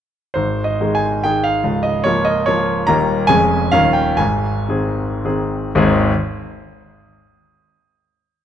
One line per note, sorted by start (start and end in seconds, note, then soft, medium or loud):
0.34 1.61 G#1 soft
0.34 1.61 G#2 soft
0.34 0.65 C5 medium
0.64 0.95 D#5 medium
0.81 1.21 D#3 soft
0.81 1.21 G#3 soft
0.81 1.21 G#4 soft
0.95 1.24 G#5 medium
1.24 1.62 D#3 soft
1.24 1.62 G#3 soft
1.24 1.62 G#4 soft
1.24 1.45 G5 medium
1.44 1.84 F5 medium
1.64 2.84 C#1 soft
1.64 2.84 C#2 soft
1.83 2.05 D#5 medium
2.04 2.44 F3 soft
2.04 2.44 A#3 soft
2.04 2.44 F4 soft
2.04 2.26 C#5 medium
2.25 2.47 D#5 medium
2.46 2.84 F3 soft
2.46 2.84 A#3 soft
2.46 2.84 F4 soft
2.46 2.87 C#5 medium
2.87 3.28 D#1 soft
2.87 3.28 D#2 medium
2.87 3.25 G3 soft
2.87 3.25 A#3 soft
2.87 3.26 D#4 soft
2.87 3.28 A#5 medium
3.27 3.72 F1 medium
3.27 3.72 F2 medium
3.27 3.69 G#3 soft
3.27 3.69 C#4 soft
3.27 3.70 G#4 soft
3.27 3.73 G#5 medium
3.72 4.18 D#1 soft
3.72 4.18 D#2 medium
3.72 4.15 D#3 soft
3.72 4.15 C#4 soft
3.72 4.16 A#4 soft
3.72 3.95 F5 medium
3.93 4.18 G5 medium
4.17 5.70 G#1 soft
4.17 5.70 G#2 soft
4.17 5.23 G#5 medium
4.69 5.19 D#3 soft
4.69 5.20 C4 soft
4.69 5.20 G#4 soft
5.25 5.71 D#3 soft
5.25 5.71 C4 soft
5.25 5.71 G#4 soft
5.75 6.01 G#1 medium
5.75 6.01 D#2 medium
5.75 6.01 G#3 medium
5.75 6.01 C4 medium
5.75 6.01 D#4 medium
5.75 6.02 G#4 medium